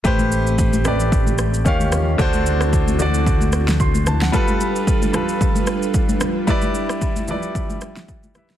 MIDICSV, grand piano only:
0, 0, Header, 1, 2, 480
1, 0, Start_track
1, 0, Key_signature, 0, "minor"
1, 0, Tempo, 535714
1, 44, Time_signature, 4, 2, 24, 8
1, 7679, End_track
2, 0, Start_track
2, 0, Title_t, "Grand piano"
2, 0, Program_c, 0, 0
2, 35, Note_on_c, 0, 57, 104
2, 44, Note_on_c, 0, 67, 97
2, 55, Note_on_c, 0, 71, 96
2, 63, Note_on_c, 0, 72, 113
2, 193, Control_c, 0, 64, 127
2, 625, Note_off_c, 0, 57, 0
2, 630, Note_off_c, 0, 67, 0
2, 635, Note_off_c, 0, 71, 0
2, 639, Note_off_c, 0, 72, 0
2, 756, Note_on_c, 0, 57, 83
2, 766, Note_on_c, 0, 67, 75
2, 777, Note_on_c, 0, 71, 72
2, 785, Note_on_c, 0, 74, 91
2, 1475, Note_on_c, 0, 51, 89
2, 1480, Note_off_c, 0, 57, 0
2, 1480, Note_off_c, 0, 67, 0
2, 1484, Note_on_c, 0, 61, 84
2, 1490, Note_off_c, 0, 71, 0
2, 1493, Note_on_c, 0, 67, 83
2, 1495, Note_off_c, 0, 74, 0
2, 1495, Control_c, 0, 64, 0
2, 1504, Note_on_c, 0, 77, 96
2, 1644, Control_c, 0, 64, 127
2, 1873, Note_off_c, 0, 51, 0
2, 1878, Note_off_c, 0, 61, 0
2, 1882, Note_off_c, 0, 67, 0
2, 1888, Note_off_c, 0, 77, 0
2, 1954, Note_on_c, 0, 50, 105
2, 1964, Note_on_c, 0, 62, 101
2, 1975, Note_on_c, 0, 66, 94
2, 1976, Control_c, 0, 64, 0
2, 1984, Note_on_c, 0, 72, 118
2, 2115, Control_c, 0, 64, 127
2, 2545, Note_off_c, 0, 50, 0
2, 2550, Note_off_c, 0, 62, 0
2, 2555, Note_off_c, 0, 66, 0
2, 2560, Note_off_c, 0, 72, 0
2, 2674, Note_on_c, 0, 50, 81
2, 2685, Note_on_c, 0, 62, 76
2, 2693, Note_on_c, 0, 66, 80
2, 2704, Note_on_c, 0, 74, 94
2, 3409, Note_on_c, 0, 84, 68
2, 3452, Note_off_c, 0, 50, 0
2, 3457, Note_off_c, 0, 62, 0
2, 3461, Note_off_c, 0, 66, 0
2, 3467, Note_off_c, 0, 74, 0
2, 3635, Note_off_c, 0, 84, 0
2, 3649, Note_on_c, 0, 81, 72
2, 3772, Note_off_c, 0, 81, 0
2, 3782, Note_on_c, 0, 78, 69
2, 3873, Note_on_c, 0, 55, 106
2, 3882, Note_on_c, 0, 65, 93
2, 3892, Note_on_c, 0, 69, 95
2, 3897, Control_c, 0, 64, 0
2, 3901, Note_on_c, 0, 71, 117
2, 4007, Note_off_c, 0, 78, 0
2, 4049, Control_c, 0, 64, 127
2, 4464, Note_off_c, 0, 55, 0
2, 4468, Note_off_c, 0, 65, 0
2, 4474, Note_off_c, 0, 69, 0
2, 4478, Note_off_c, 0, 71, 0
2, 4595, Note_on_c, 0, 55, 84
2, 4605, Note_on_c, 0, 65, 78
2, 4614, Note_on_c, 0, 69, 76
2, 4623, Note_on_c, 0, 71, 93
2, 5372, Note_off_c, 0, 55, 0
2, 5377, Note_off_c, 0, 65, 0
2, 5382, Note_off_c, 0, 69, 0
2, 5386, Note_off_c, 0, 71, 0
2, 5798, Note_on_c, 0, 55, 104
2, 5807, Note_on_c, 0, 64, 101
2, 5816, Control_c, 0, 64, 0
2, 5816, Note_on_c, 0, 71, 98
2, 5826, Note_on_c, 0, 74, 115
2, 5995, Control_c, 0, 64, 127
2, 6387, Note_off_c, 0, 55, 0
2, 6391, Note_off_c, 0, 64, 0
2, 6396, Note_off_c, 0, 71, 0
2, 6401, Note_off_c, 0, 74, 0
2, 6518, Note_on_c, 0, 53, 66
2, 6529, Note_on_c, 0, 64, 77
2, 6538, Note_on_c, 0, 71, 76
2, 6547, Note_on_c, 0, 74, 91
2, 6578, Note_on_c, 0, 55, 85
2, 6585, Note_off_c, 0, 53, 0
2, 7300, Note_off_c, 0, 64, 0
2, 7304, Note_off_c, 0, 71, 0
2, 7308, Note_off_c, 0, 74, 0
2, 7324, Note_off_c, 0, 55, 0
2, 7481, Note_on_c, 0, 55, 75
2, 7489, Note_on_c, 0, 64, 72
2, 7498, Note_on_c, 0, 71, 70
2, 7508, Note_on_c, 0, 76, 83
2, 7679, Note_off_c, 0, 55, 0
2, 7679, Note_off_c, 0, 64, 0
2, 7679, Note_off_c, 0, 71, 0
2, 7679, Note_off_c, 0, 76, 0
2, 7679, End_track
0, 0, End_of_file